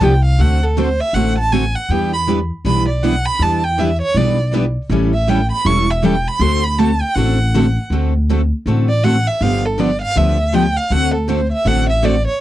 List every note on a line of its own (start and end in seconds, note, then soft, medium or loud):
0.01 0.33 C2 medium
0.01 0.13 D3 medium
0.01 0.13 F3 medium
0.01 0.13 B3 loud
0.01 0.13 D4 loud
0.01 0.13 G4 loud
0.01 0.24 G5 medium
0.25 0.43 F5 medium
0.38 0.99 D2 medium
0.38 0.60 D3 medium
0.38 0.60 A3 medium
0.38 0.60 C4 medium
0.38 0.60 F#4 medium
0.38 0.60 A4 medium
0.38 0.65 F#5 medium
0.63 0.80 A4 medium
0.77 0.88 D3 medium
0.77 0.88 A3 medium
0.77 0.88 C4 medium
0.77 0.88 F#4 medium
0.77 0.88 A4 medium
0.77 1.02 C5 medium
1.00 1.16 E5 loud
1.13 1.74 A1 medium
1.13 1.35 D3 medium
1.13 1.36 A3 medium
1.13 1.36 C4 medium
1.13 1.36 F#4 medium
1.13 1.36 A4 medium
1.13 1.37 F#5 medium
1.38 1.54 A5 loud
1.52 1.63 D3 medium
1.52 1.63 A3 medium
1.52 1.63 C4 medium
1.52 1.63 F#4 medium
1.52 1.63 A4 medium
1.52 1.77 G#5 loud
1.75 1.92 F#5 medium
1.89 2.49 E2 medium
1.89 2.11 E3 medium
1.89 2.11 G3 medium
1.89 2.11 B3 medium
1.89 2.11 D4 medium
1.89 2.11 E4 medium
1.89 2.11 G4 medium
1.89 2.11 B4 medium
1.89 2.13 G5 medium
2.13 2.22 B5 loud
2.27 2.38 E3 medium
2.27 2.38 G3 medium
2.27 2.38 B3 medium
2.27 2.38 D4 loud
2.27 2.39 E4 loud
2.27 2.39 G4 medium
2.27 2.39 B4 loud
2.65 3.25 B1 medium
2.65 2.86 E3 medium
2.65 2.86 G3 medium
2.65 2.86 B3 medium
2.65 2.86 D4 medium
2.65 2.87 E4 medium
2.65 2.86 G4 medium
2.65 2.86 B4 medium
2.65 2.87 B5 medium
2.89 3.05 D5 medium
3.03 3.14 E3 medium
3.03 3.14 G3 medium
3.03 3.14 B3 medium
3.03 3.14 D4 medium
3.03 3.14 E4 loud
3.03 3.15 G4 medium
3.03 3.14 B4 medium
3.03 3.27 F#5 loud
3.26 3.44 B5 loud
3.39 4.00 E2 medium
3.39 3.61 E3 medium
3.39 3.61 G3 medium
3.39 3.62 B3 medium
3.39 3.61 D4 medium
3.39 3.61 E4 medium
3.39 3.62 G4 medium
3.39 3.61 B4 medium
3.39 3.65 A5 loud
3.64 3.81 G5 medium
3.78 3.89 E3 medium
3.78 3.89 G3 medium
3.78 3.90 B3 medium
3.78 3.89 D4 medium
3.78 3.89 E4 loud
3.78 3.90 G4 medium
3.78 3.89 B4 loud
3.78 4.01 E5 medium
4.02 4.19 C#5 loud
4.14 4.75 B1 medium
4.14 4.36 E3 medium
4.14 4.36 G3 medium
4.14 4.37 B3 medium
4.14 4.36 D4 medium
4.14 4.36 E4 medium
4.14 4.37 G4 medium
4.14 4.36 B4 medium
4.14 4.54 D5 medium
4.52 4.63 E3 medium
4.52 4.64 G3 medium
4.52 4.64 B3 medium
4.52 4.64 D4 medium
4.52 4.64 E4 loud
4.52 4.65 G4 loud
4.52 4.64 B4 loud
4.89 5.50 A1 medium
4.89 5.11 E3 medium
4.89 5.11 G3 medium
4.89 5.11 C#4 medium
4.89 5.11 E4 medium
4.89 5.11 A4 medium
5.14 5.30 E5 medium
5.27 5.39 E3 medium
5.27 5.39 G3 loud
5.27 5.39 C#4 loud
5.27 5.39 E4 medium
5.27 5.39 A4 loud
5.27 5.51 G5 medium
5.52 5.68 B5 loud
5.65 6.25 E1 medium
5.65 5.86 E3 medium
5.65 5.86 G3 medium
5.65 5.86 C#4 medium
5.65 5.86 E4 medium
5.65 5.86 A4 medium
5.65 5.92 C#6 loud
5.90 6.07 E5 medium
6.02 6.14 E3 medium
6.02 6.14 G3 medium
6.02 6.14 C#4 medium
6.02 6.14 E4 loud
6.02 6.14 A4 medium
6.02 6.29 G5 medium
6.28 6.43 B5 loud
6.39 7.00 D2 medium
6.39 6.61 D3 medium
6.39 6.62 A3 medium
6.39 6.62 C4 medium
6.39 6.62 F#4 medium
6.39 6.62 A4 medium
6.39 6.65 C6 loud
6.64 6.80 B5 loud
6.78 6.89 D3 medium
6.78 6.89 A3 medium
6.78 6.90 C4 medium
6.78 6.90 F#4 medium
6.78 6.90 A4 medium
6.78 7.03 A5 loud
7.02 7.17 G5 loud
7.15 7.76 A1 medium
7.15 7.37 D3 medium
7.15 7.37 A3 medium
7.15 7.37 C4 medium
7.15 7.38 F#4 medium
7.15 7.38 A4 medium
7.15 7.83 F#5 medium
7.55 7.65 D3 loud
7.55 7.65 A3 medium
7.55 7.65 C4 loud
7.55 7.65 F#4 loud
7.55 7.66 A4 loud
7.90 8.51 D2 medium
7.90 8.12 D3 medium
7.90 8.12 A3 medium
7.90 8.12 C4 medium
7.90 8.12 F#4 medium
7.90 8.12 A4 medium
8.30 8.40 D3 medium
8.30 8.40 A3 medium
8.30 8.40 C4 medium
8.30 8.40 F#4 medium
8.30 8.41 A4 medium
8.66 9.26 A1 medium
8.66 8.87 D3 medium
8.66 8.87 A3 medium
8.66 8.87 C4 medium
8.66 8.87 F#4 medium
8.66 8.87 A4 medium
8.89 9.05 D5 medium
9.03 9.14 D3 medium
9.03 9.15 A3 medium
9.03 9.15 C4 loud
9.03 9.15 F#4 medium
9.03 9.15 A4 medium
9.03 9.29 F#5 loud
9.27 9.43 E5 medium
9.41 10.01 G1 medium
9.41 9.62 D3 medium
9.41 9.62 F3 medium
9.41 9.62 B3 medium
9.41 9.63 D4 medium
9.41 9.63 G4 medium
9.41 9.67 F5 loud
9.65 9.81 A4 medium
9.79 9.90 D3 medium
9.79 9.90 F3 medium
9.79 9.90 B3 medium
9.79 9.90 D4 medium
9.79 9.90 G4 medium
9.79 10.01 D5 medium
10.02 10.19 F5 loud
10.16 10.76 D2 medium
10.16 10.37 D3 medium
10.16 10.37 F3 medium
10.16 10.37 B3 medium
10.16 10.37 D4 medium
10.16 10.38 G4 medium
10.16 10.56 E5 loud
10.54 10.65 D3 medium
10.54 10.65 F3 medium
10.54 10.65 B3 medium
10.54 10.65 D4 loud
10.54 10.66 G4 loud
10.54 10.78 G5 loud
10.77 10.94 F5 loud
10.90 11.51 D2 medium
10.90 11.12 D3 medium
10.90 11.12 A3 medium
10.90 11.12 C4 medium
10.90 11.12 F#4 medium
10.90 11.12 A4 medium
10.90 11.14 F#5 loud
11.14 11.30 A4 medium
11.28 11.39 D3 medium
11.28 11.40 A3 medium
11.28 11.39 C4 medium
11.28 11.40 F#4 medium
11.28 11.40 A4 medium
11.28 11.51 C5 medium
11.52 11.69 E5 loud
11.65 12.26 A1 medium
11.65 11.86 D3 medium
11.65 11.87 A3 medium
11.65 11.87 C4 medium
11.65 11.87 F#4 medium
11.65 11.87 A4 medium
11.65 11.89 F#5 loud
11.89 12.06 E5 medium
12.03 12.14 D3 medium
12.03 12.14 A3 loud
12.03 12.15 C4 loud
12.03 12.15 F#4 loud
12.03 12.15 A4 medium
12.03 12.27 D5 medium
12.27 12.41 C#5 medium